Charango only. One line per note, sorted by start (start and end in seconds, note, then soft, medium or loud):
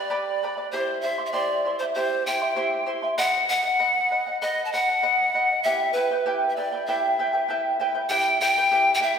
0.10 0.41 G4 medium
0.10 0.41 B4 medium
0.10 0.42 D5 medium
0.10 0.41 G5 medium
0.10 0.42 B5 medium
0.43 0.57 B4 medium
0.43 0.56 D5 medium
0.43 0.57 G5 medium
0.43 0.56 B5 medium
0.57 0.73 B4 soft
0.57 0.73 D5 soft
0.57 0.72 B5 soft
0.73 1.03 E4 medium
0.73 1.04 G4 medium
0.73 1.02 C5 medium
0.73 1.03 E5 medium
0.73 1.04 C6 medium
1.03 1.18 E4 medium
1.03 1.19 C5 medium
1.03 1.18 E5 medium
1.03 1.17 C6 medium
1.18 1.33 E4 soft
1.18 1.33 E5 soft
1.18 1.33 C6 soft
1.33 1.64 E4 medium
1.33 1.64 G4 medium
1.33 1.64 C5 medium
1.33 1.65 E5 medium
1.33 1.65 C6 medium
1.65 1.80 E4 medium
1.65 1.80 C5 medium
1.65 1.81 E5 medium
1.65 1.80 C6 medium
1.81 1.95 E4 soft
1.81 1.96 E5 soft
1.81 1.96 C6 medium
1.96 2.26 E4 medium
1.96 2.27 G4 medium
1.96 2.26 C5 medium
1.96 2.27 E5 medium
1.96 2.27 C6 medium
2.27 2.41 E4 medium
2.27 2.42 C5 medium
2.27 2.41 E5 medium
2.27 2.40 C6 medium
2.42 2.55 E4 soft
2.42 2.56 E5 soft
2.42 2.56 C6 medium
2.56 2.85 E4 medium
2.56 2.88 G4 medium
2.56 2.85 C5 medium
2.56 2.86 E5 medium
2.56 2.86 C6 medium
2.86 3.03 E4 medium
2.86 3.02 C5 medium
2.86 3.02 E5 medium
2.86 3.01 C6 medium
3.02 3.17 E4 soft
3.02 3.18 E5 soft
3.02 3.18 C6 soft
3.18 3.48 B4 medium
3.18 3.49 D#5 medium
3.18 3.49 F#5 medium
3.49 3.65 B4 medium
3.49 3.63 D#5 medium
3.49 3.61 F#5 medium
3.62 3.78 D#5 soft
3.62 3.79 F#5 medium
3.79 4.10 B4 medium
3.79 4.10 D#5 medium
3.79 4.11 F#5 medium
4.11 4.26 B4 medium
4.11 4.27 D#5 medium
4.11 4.26 F#5 medium
4.27 4.41 D#5 soft
4.27 4.42 F#5 medium
4.42 4.72 B4 medium
4.42 4.73 D#5 medium
4.42 4.73 F#5 medium
4.73 4.88 B4 medium
4.73 4.88 D#5 medium
4.73 4.88 F#5 medium
4.89 5.02 D#5 soft
4.89 5.03 F#5 soft
5.03 5.33 B4 medium
5.03 5.34 D#5 medium
5.03 5.34 F#5 medium
5.34 5.50 B4 medium
5.34 5.50 D#5 medium
5.34 5.49 F#5 medium
5.51 5.65 D#5 soft
5.51 5.65 F#5 medium
5.65 5.94 E4 medium
5.65 5.96 G4 medium
5.65 5.95 B4 medium
5.65 5.93 E5 medium
5.65 5.95 G5 medium
5.95 6.11 E4 medium
5.95 6.10 B4 medium
5.95 6.10 E5 medium
5.95 6.10 G5 medium
6.11 6.25 E4 soft
6.11 6.25 B4 soft
6.11 6.26 G5 soft
6.26 6.57 E4 medium
6.26 6.57 G4 medium
6.26 6.57 B4 medium
6.26 6.56 E5 medium
6.26 6.57 G5 medium
6.57 6.73 E4 medium
6.57 6.72 B4 medium
6.57 6.72 E5 medium
6.57 6.71 G5 medium
6.72 6.87 E4 soft
6.72 6.87 B4 soft
6.72 6.87 G5 medium
6.88 7.18 E4 medium
6.88 7.19 G4 medium
6.88 7.19 B4 medium
6.88 7.18 E5 medium
6.88 7.19 G5 medium
7.19 7.33 E4 medium
7.19 7.34 B4 medium
7.19 7.34 E5 medium
7.19 7.32 G5 medium
7.33 7.49 E4 soft
7.33 7.48 B4 soft
7.33 7.49 G5 medium
7.48 7.79 E4 medium
7.48 7.79 G4 medium
7.48 7.80 B4 medium
7.48 7.78 E5 medium
7.48 7.80 G5 medium
7.80 7.95 E4 medium
7.80 7.94 B4 medium
7.80 7.95 E5 medium
7.80 7.93 G5 medium
7.95 8.09 E4 soft
7.95 8.10 B4 soft
7.95 8.10 G5 medium
8.10 8.40 E4 medium
8.10 8.40 G4 medium
8.10 8.40 B4 medium
8.10 8.40 E5 medium
8.10 8.41 G5 medium
8.41 8.56 E4 medium
8.41 8.56 B4 medium
8.41 8.56 E5 medium
8.41 8.56 G5 medium
8.57 8.70 E4 soft
8.57 8.71 B4 medium
8.57 8.71 G5 medium
8.71 8.99 E4 medium
8.71 9.02 G4 medium
8.71 9.00 B4 medium
8.71 8.99 E5 medium
8.71 9.00 G5 medium
9.00 9.16 E4 medium
9.00 9.15 B4 medium
9.00 9.16 E5 medium
9.00 9.15 G5 medium